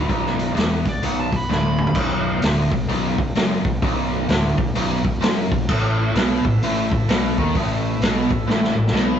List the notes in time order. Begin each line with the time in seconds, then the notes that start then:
Already playing: B3 D#4 F#4
0.08 B0 B1, kick, open hi-hat
0.26 snare
0.39 open hi-hat
0.54 E1 E2, open hi-hat
0.58 snare
0.85 B0 B1 D5, kick, open hi-hat
1.02 B0 B1 F#5, open hi-hat
1.20 A5
1.32 B0 B1, kick, open hi-hat
1.36 B5
1.49 D1 D2 B5, snare
1.78 mid tom
1.87 floor tom
1.95 B0 B1, kick, crash
2.42 D1 D2, snare, open hi-hat
2.71 B0 B1, kick
2.88 B0 B1, open hi-hat
3.18 B0 B1, kick
3.35 F#1 F#2, snare, open hi-hat
3.65 B0 B1, kick
3.82 B0 B1, kick, open hi-hat
4.29 D1 D2, snare, open hi-hat
4.57 B0 B1, kick
4.75 B0 B1, open hi-hat
5.04 B0 B1, kick
5.21 F#1 F#2, snare, open hi-hat
5.51 B0 B1, kick
5.68 A1 A2 A3 E4 A4 E5, kick, crash
6.15 B1 B2, snare, open hi-hat
6.44 A1 A2, kick
6.61 A1 A2, open hi-hat
6.92 A1 A2, kick
7.09 B1 B2, snare, open hi-hat
7.38 D#2 D#3, kick
7.55 A1 A2, kick, open hi-hat
7.99 B1 B2, open hi-hat
8.03 snare
8.31 A1 A2, kick
8.46 A1 A2, snare
8.64 snare
8.75 A1 A2
8.87 snare
8.92 B1 B2, snare